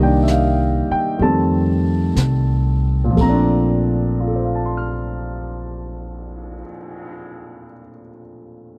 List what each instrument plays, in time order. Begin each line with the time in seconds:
Already playing: upright bass C2, grand piano D#3 G3 D#5
0.01 grand piano A#3 D4 G5
0.23 grand piano E5
0.28 grand piano F5, snare, hi-hat pedal
0.90 grand piano G5, muted upright bass stroke
1.18 upright bass F2, grand piano D#3 G3 A3, brush sweep
1.22 grand piano C4 A5
2.16 upright bass C2, snare, hi-hat pedal
3.04 grand piano A#2
3.11 grand piano F3
3.17 upright bass A#1, grand piano A3, kick, ride
3.21 grand piano C4 A#5
3.29 grand piano D4
3.88 cymbal swell
4.20 grand piano F4
4.27 grand piano A4
4.36 grand piano C5
4.45 grand piano F5
4.55 grand piano A5
4.66 grand piano C6
4.77 grand piano F6